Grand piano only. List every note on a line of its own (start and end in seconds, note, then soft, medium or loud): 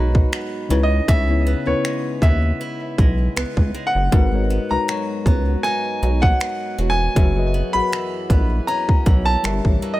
0.00 0.66 B5 loud
0.83 1.09 D#5 medium
1.08 1.69 E5 medium
1.67 2.24 C#5 medium
2.23 3.32 E5 medium
3.87 4.73 F#5 loud
4.71 5.67 A#5 medium
5.63 6.24 G#5 loud
6.22 6.74 F#5 loud
6.90 7.77 G#5 loud
7.73 8.70 B5 loud
8.67 9.28 A#5 loud
9.26 9.78 A5 loud
9.94 10.00 D#5 medium